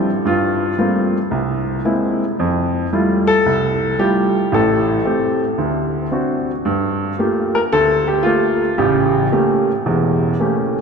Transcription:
0.25 0.71 G2 medium
0.25 0.77 F4 medium
0.78 1.16 G3 soft
0.78 1.17 A3 soft
0.78 1.17 A#3 soft
0.78 1.17 C4 soft
0.78 1.17 F4 medium
1.31 1.78 C2 medium
1.85 2.23 G#3 soft
1.85 2.23 A#3 soft
1.85 2.23 C4 soft
1.85 2.23 E4 medium
2.39 2.85 F2 medium
2.93 3.30 G3 medium
2.93 3.30 A3 soft
2.93 3.31 E4 soft
2.93 3.31 F4 medium
3.27 4.00 A4 loud
3.46 3.92 C2 medium
3.99 4.37 G3 soft
3.99 4.37 A3 soft
3.99 4.37 E4 soft
3.99 4.37 F4 medium
3.99 4.54 G4 medium
4.52 4.98 A1 medium
4.52 4.98 A2 medium
4.52 5.39 A4 medium
5.05 5.43 A3 soft
5.05 5.43 C4 soft
5.05 5.43 G4 medium
5.58 6.05 D2 medium
6.11 6.50 C4 soft
6.11 6.50 D4 soft
6.11 6.50 F#4 medium
6.65 7.12 G2 medium
7.19 7.57 A3 soft
7.19 7.57 A#3 soft
7.19 7.57 F4 soft
7.19 7.57 G4 medium
7.55 7.60 A#4 medium
7.72 8.19 D2 medium
7.72 8.06 A4 medium
8.08 8.25 G4 medium
8.23 8.63 A3 soft
8.23 8.64 A#3 soft
8.23 8.74 F4 medium
8.23 8.64 G4 medium
8.78 9.25 A1 medium
8.78 9.25 C#3 medium
8.78 9.31 G4 medium
9.32 9.71 A3 medium
9.32 9.71 A#3 soft
9.32 9.71 C#4 soft
9.32 9.71 G4 medium
9.86 10.32 E1 medium
9.86 10.32 E2 medium
10.40 10.78 A3 soft
10.40 10.78 A#3 soft
10.40 10.78 C#4 soft
10.40 10.78 G4 medium

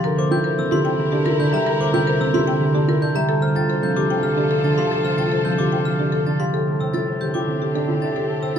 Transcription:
0.00 1.11 C4 medium
0.04 3.14 D2 medium
0.04 3.11 E4 medium
0.04 0.22 A#4 loud
0.04 3.11 A#4 medium
0.04 0.22 A#4 medium
0.18 1.78 A#3 medium
0.18 0.36 C5 medium
0.18 0.36 D6 medium
0.31 1.92 C3 medium
0.31 0.49 E4 loud
0.31 0.49 G5 medium
0.31 0.49 G6 loud
0.44 0.62 A#4 loud
0.44 0.63 C5 medium
0.58 0.97 E3 medium
0.58 0.76 C4 medium
0.58 0.76 E6 medium
0.71 1.39 D3 medium
0.71 0.90 E4 loud
0.71 0.90 G4 medium
0.71 0.90 C6 loud
0.85 1.03 C4 medium
0.85 1.03 G5 loud
0.99 2.19 E3 medium
0.99 1.17 G4 medium
1.12 2.73 C4 medium
1.12 1.30 D4 loud
1.12 1.30 G4 medium
1.26 1.44 E4 medium
1.26 1.44 A#4 loud
1.39 2.32 D3 medium
1.39 1.57 D4 medium
1.39 1.57 G6 medium
1.53 3.14 G3 medium
1.53 1.71 G4 loud
1.53 1.71 E5 medium
1.53 1.71 A#5 loud
1.66 1.84 A#4 loud
1.66 1.84 A#4 medium
1.80 3.31 A#3 medium
1.80 1.98 C5 medium
1.80 1.98 D6 medium
1.93 3.31 C3 medium
1.93 2.11 E4 loud
1.93 2.12 G5 medium
1.93 2.12 G6 loud
2.07 2.25 A#4 loud
2.07 2.25 C5 medium
2.20 2.59 E3 medium
2.20 2.38 C4 loud
2.20 2.39 E6 medium
2.34 3.01 D3 loud
2.34 2.52 E4 loud
2.34 2.52 G4 medium
2.34 2.52 C6 loud
2.47 2.65 C4 medium
2.47 2.65 G5 loud
2.60 3.31 E3 medium
2.60 2.79 G4 medium
2.74 4.35 C4 medium
2.74 2.92 D4 loud
2.74 2.93 G4 medium
2.88 3.06 E4 medium
2.88 3.06 A#4 loud
3.02 3.31 D3 medium
3.02 3.19 D4 medium
3.02 3.20 G6 medium
3.15 4.76 G3 medium
3.15 3.33 G4 loud
3.15 3.33 E5 medium
3.15 3.33 A#5 loud
3.28 6.39 D2 loud
3.28 6.36 F4 medium
3.28 3.46 A4 medium
3.28 3.47 A4 loud
3.28 6.36 A4 medium
3.41 5.02 A3 medium
3.41 3.60 C5 medium
3.41 3.60 F6 medium
3.55 5.16 C3 medium
3.55 3.73 F4 loud
3.55 3.74 G5 medium
3.55 3.74 A6 loud
3.69 3.87 A4 loud
3.69 3.87 C5 medium
3.82 4.21 F3 medium
3.82 4.01 C4 medium
3.82 4.01 G6 medium
3.96 4.62 D3 medium
3.96 4.14 F4 loud
3.96 4.14 G4 medium
3.96 4.14 D6 loud
4.10 4.28 C4 medium
4.10 4.28 G5 loud
4.23 5.44 F3 medium
4.23 4.41 G4 medium
4.23 4.41 F6 medium
4.36 5.97 C4 medium
4.36 4.55 D4 medium
4.36 4.55 G4 medium
4.50 4.68 F4 medium
4.50 4.68 A4 loud
4.63 5.57 D3 medium
4.63 4.82 D4 medium
4.63 4.82 A6 medium
4.77 6.38 G3 medium
4.77 4.95 G4 loud
4.77 4.95 F5 medium
4.77 4.95 C6 medium
4.91 5.09 A4 medium
4.91 5.09 A4 loud
5.04 6.66 A3 medium
5.04 5.22 C5 medium
5.04 5.22 F6 medium
5.17 6.55 C3 medium
5.17 5.36 F4 medium
5.17 5.36 G5 medium
5.17 5.36 A6 medium
5.31 5.49 A4 medium
5.31 5.49 C5 medium
5.45 5.84 F3 medium
5.45 5.63 C4 medium
5.45 5.63 G6 medium
5.58 6.25 D3 medium
5.58 5.76 F4 medium
5.58 5.76 G4 medium
5.58 5.76 D6 medium
5.72 5.90 C4 medium
5.72 5.90 G5 medium
5.85 6.55 F3 medium
5.85 6.03 G4 medium
5.85 6.03 F6 medium
5.98 8.59 C4 medium
5.98 6.17 D4 medium
5.98 6.17 G4 medium
6.12 6.30 F4 medium
6.12 6.30 A4 medium
6.26 6.55 D3 medium
6.26 6.44 D4 medium
6.26 6.44 A6 medium
6.39 8.59 G3 medium
6.39 6.52 G4 medium
6.39 6.57 F5 medium
6.39 6.57 C6 medium
6.53 8.59 A2 medium
6.53 8.59 C4 medium
6.53 6.71 G4 medium
6.53 8.59 G4 medium
6.53 6.71 A4 medium
6.67 8.28 A3 medium
6.67 6.85 A4 medium
6.80 8.41 C3 medium
6.80 6.98 C5 medium
6.80 6.98 G5 medium
6.80 6.98 E6 medium
6.94 7.12 E4 medium
6.94 7.12 A4 medium
6.94 7.11 A6 medium
7.08 7.46 E3 medium
7.08 7.25 C5 medium
7.21 7.87 D3 medium
7.21 7.39 C4 medium
7.21 7.39 G4 medium
7.21 7.38 G6 medium
7.34 7.52 E4 medium
7.34 7.52 G5 medium
7.34 7.52 D6 medium
7.47 8.59 E3 medium
7.47 7.66 C4 medium
7.61 7.79 G4 medium
7.75 7.93 D4 medium
7.75 7.93 A4 medium
7.88 8.59 D3 medium
7.88 8.06 E4 medium
8.02 8.20 D4 medium
8.02 8.20 E5 medium
8.02 8.20 A6 medium
8.16 8.33 G4 medium
8.16 8.33 A4 medium
8.29 8.59 A3 medium
8.29 8.47 A4 medium
8.42 8.59 C3 medium
8.42 8.59 C5 medium
8.42 8.59 G5 medium
8.42 8.59 E6 medium

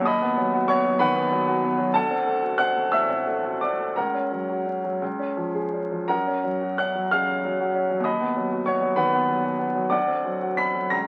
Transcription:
0.01 1.87 D#2 medium
0.05 0.65 D#5 medium
0.05 0.65 B5 medium
0.05 0.68 D#6 medium
0.22 0.46 B3 medium
0.37 0.62 F#3 soft
0.53 0.78 F#4 medium
0.68 0.94 B3 medium
0.68 0.98 C#5 medium
0.68 1.00 C#6 medium
0.84 1.09 F#3 soft
0.99 1.25 D#3 medium
0.99 1.90 B4 medium
0.99 1.90 F#5 medium
0.99 1.93 B5 loud
1.15 1.40 B3 medium
1.31 1.56 F#3 medium
1.47 1.72 F#4 medium
1.63 1.88 B3 soft
1.78 1.94 F#3 medium
1.94 3.93 D2 medium
1.94 2.55 A4 medium
1.94 2.55 F#5 medium
1.94 2.58 A5 medium
2.11 2.36 C4 soft
2.27 2.52 A3 soft
2.42 2.68 F#4 soft
2.58 2.85 C4 medium
2.58 2.90 F#5 medium
2.58 2.91 F#6 medium
2.76 3.02 A3 soft
2.92 3.20 A2 soft
2.92 3.58 E5 medium
2.92 3.61 E6 medium
3.10 3.37 C4 soft
3.27 3.55 A3 soft
3.44 3.72 F#4 soft
3.61 3.90 C4 soft
3.61 3.94 D5 medium
3.61 3.96 D6 medium
3.79 3.96 A3 soft
3.96 4.98 C#2 soft
3.96 4.98 A#4 soft
3.96 4.97 F#5 soft
3.96 5.01 A#5 medium
4.14 4.42 C#4 soft
4.32 4.59 F#3 soft
4.49 4.77 F#4 soft
4.67 4.94 C#4 soft
4.84 5.01 F#3 soft
5.02 6.06 C#2 soft
5.19 5.48 C#4 soft
5.37 5.66 F3 soft
5.55 5.84 G#4 soft
5.74 6.02 C#4 soft
5.92 6.09 F3 soft
6.08 8.01 F#2 soft
6.08 6.74 A#4 soft
6.08 6.74 F#5 soft
6.08 6.77 A#5 medium
6.27 6.54 C#4 soft
6.43 6.71 F#3 soft
6.61 6.88 F#4 soft
6.78 7.05 C#4 soft
6.78 7.10 F#5 medium
6.78 7.12 F#6 medium
6.96 7.22 F#3 soft
7.11 7.38 C#3 soft
7.11 8.01 F5 medium
7.11 8.05 F6 medium
7.28 7.53 C#4 soft
7.45 7.69 F#3 soft
7.60 7.84 F#4 soft
7.75 7.99 C#4 soft
7.90 8.05 F#3 soft
8.00 9.85 D#2 medium
8.04 8.62 D#5 medium
8.04 8.62 B5 medium
8.04 8.65 D#6 medium
8.20 8.45 B3 soft
8.37 8.60 F#3 soft
8.51 8.76 F#4 soft
8.66 8.91 B3 soft
8.66 8.95 C#5 medium
8.66 8.97 C#6 medium
8.81 9.06 F#3 soft
8.96 9.22 D#3 soft
8.96 9.87 B4 medium
8.96 9.87 F#5 medium
8.96 9.91 B5 medium
9.13 9.38 B3 soft
9.29 9.54 F#3 soft
9.44 9.69 F#4 soft
9.59 9.85 B3 soft
9.75 9.91 F#3 soft
9.90 10.89 D2 soft
9.90 10.54 D5 medium
9.90 10.54 F#5 medium
9.90 10.57 D6 medium
10.08 10.34 C4 soft
10.24 10.51 F#3 soft
10.41 10.68 F#4 soft
10.57 10.85 C4 soft
10.57 10.90 B5 medium
10.57 10.92 B6 medium
10.75 10.92 F#3 soft
10.90 11.07 C#2 medium
10.90 11.07 A#5 medium
10.90 11.07 A#6 medium

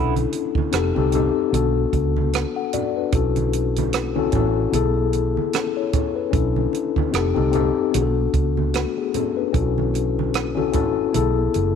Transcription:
0.00 0.24 B1 medium
0.00 0.14 B3 soft
0.00 0.55 C#4 medium
0.00 0.56 D4 medium
0.00 0.14 E4 medium
0.00 0.57 E4 medium
0.00 0.57 A4 medium
0.16 closed hi-hat soft
0.16 high conga medium
0.32 closed hi-hat medium
0.32 muted conga soft
0.55 kick medium
0.55 high conga medium
0.72 0.91 F1 medium
0.72 0.90 C4 medium
0.72 0.91 D#4 medium
0.72 0.92 G4 medium
0.72 0.92 A4 medium
0.72 cross-stick loud
0.72 closed hi-hat medium
0.95 1.28 C2 medium
0.95 1.05 C4 medium
0.95 1.06 D#4 medium
0.95 1.06 G4 medium
0.95 1.07 A4 medium
0.95 high conga medium
1.11 1.52 C4 medium
1.11 1.52 D#4 medium
1.11 1.53 G4 medium
1.11 1.54 A4 medium
1.11 closed hi-hat medium
1.11 muted conga soft
1.11 low conga medium
1.51 1.84 B1 medium
1.51 2.81 B3 medium
1.51 1.92 D4 medium
1.51 1.93 F#4 medium
1.51 1.94 A4 medium
1.51 closed hi-hat medium
1.51 high conga medium
1.93 2.43 C#2 medium
1.93 kick medium
1.93 closed hi-hat soft
1.93 muted conga soft
2.17 high conga medium
2.33 cross-stick loud
2.33 closed hi-hat medium
2.33 muted conga soft
2.56 2.72 A4 soft
2.56 2.72 F#5 soft
2.73 2.95 F#4 soft
2.73 2.95 D5 medium
2.73 closed hi-hat medium
2.73 low conga soft
2.97 3.35 D4 soft
2.97 3.34 B4 medium
3.12 4.29 B1 medium
3.12 3.76 C#4 medium
3.12 3.76 E4 medium
3.12 3.77 F#4 medium
3.12 3.78 A4 medium
3.12 kick loud
3.12 closed hi-hat medium
3.36 closed hi-hat soft
3.36 high conga medium
3.53 closed hi-hat medium
3.53 muted conga soft
3.76 closed hi-hat medium
3.76 high conga medium
3.93 cross-stick loud
3.93 closed hi-hat medium
3.93 muted conga soft
4.16 4.26 C#4 medium
4.16 4.26 E4 medium
4.16 4.27 F#4 medium
4.16 4.28 A4 medium
4.16 high conga medium
4.32 4.65 A1 medium
4.32 4.72 C#4 medium
4.32 4.72 E4 medium
4.32 4.74 F#4 medium
4.32 kick medium
4.32 closed hi-hat medium
4.32 muted conga soft
4.32 low conga medium
4.36 4.74 A4 medium
4.72 5.36 B1 medium
4.72 6.02 B3 medium
4.72 5.53 E4 medium
4.72 5.54 G#4 medium
4.72 5.52 A4 medium
4.72 closed hi-hat medium
4.72 muted conga soft
4.72 high conga medium
5.13 closed hi-hat medium
5.13 muted conga soft
5.37 high conga soft
5.53 5.76 C#4 soft
5.53 5.75 A4 medium
5.53 cross-stick medium
5.53 closed hi-hat medium
5.53 muted conga soft
5.77 6.15 E4 soft
5.77 6.15 C#5 medium
5.93 kick medium
5.93 closed hi-hat medium
5.93 low conga medium
6.16 6.54 B4 medium
6.31 6.65 B1 medium
6.31 6.96 C#4 medium
6.31 6.97 D4 medium
6.31 6.97 E4 medium
6.31 6.98 A4 medium
6.31 kick loud
6.31 closed hi-hat medium
6.31 muted conga soft
6.56 high conga medium
6.73 closed hi-hat medium
6.73 muted conga soft
6.96 kick medium
6.96 high conga medium
7.11 7.32 F1 medium
7.11 7.31 C4 medium
7.11 7.31 D#4 medium
7.11 7.32 G4 medium
7.11 7.33 A4 medium
7.11 cross-stick loud
7.11 closed hi-hat medium
7.34 7.69 C2 medium
7.34 7.46 C4 medium
7.34 7.46 D#4 medium
7.34 7.47 G4 medium
7.34 7.47 A4 medium
7.34 high conga medium
7.51 7.93 C4 medium
7.51 7.93 D#4 medium
7.51 7.94 G4 medium
7.51 7.94 A4 medium
7.51 closed hi-hat medium
7.55 low conga medium
7.92 8.26 B1 medium
7.92 8.33 B3 medium
7.92 8.33 D4 medium
7.92 8.34 F#4 medium
7.92 8.02 G#4 medium
7.92 closed hi-hat medium
7.92 muted conga soft
7.92 high conga medium
8.02 8.38 A4 medium
8.34 8.84 C#2 medium
8.34 kick medium
8.34 closed hi-hat medium
8.34 muted conga soft
8.57 high conga medium
8.74 8.97 A3 soft
8.74 8.96 F#4 medium
8.74 cross-stick loud
8.74 closed hi-hat medium
8.98 9.14 B3 soft
8.98 9.13 G#4 medium
9.14 9.37 C#4 medium
9.14 9.37 A4 medium
9.14 closed hi-hat medium
9.14 muted conga soft
9.14 low conga medium
9.37 9.76 D4 soft
9.37 9.75 B4 medium
9.52 10.74 B1 medium
9.52 10.17 C#4 medium
9.52 10.18 E4 medium
9.52 9.62 F4 medium
9.52 10.19 A4 medium
9.52 kick loud
9.52 closed hi-hat medium
9.52 muted conga soft
9.61 10.22 F#4 medium
9.78 high conga medium
9.94 closed hi-hat medium
9.94 muted conga soft
10.19 high conga medium
10.34 cross-stick loud
10.34 closed hi-hat medium
10.34 muted conga soft
10.55 10.66 C#4 medium
10.55 10.67 E4 medium
10.55 10.68 F#4 medium
10.55 10.68 A4 medium
10.55 high conga medium
10.72 11.06 A1 medium
10.72 11.13 C#4 medium
10.72 11.13 E4 medium
10.72 11.14 F#4 medium
10.72 11.15 A4 medium
10.72 kick medium
10.72 closed hi-hat medium
10.72 muted conga soft
10.72 low conga medium
11.13 11.47 B1 medium
11.13 11.75 B3 medium
11.13 11.75 E4 medium
11.13 11.75 G#4 medium
11.13 11.75 A4 medium
11.13 closed hi-hat medium
11.13 high conga medium
11.54 11.75 F#1 medium
11.54 closed hi-hat medium
11.54 muted conga soft

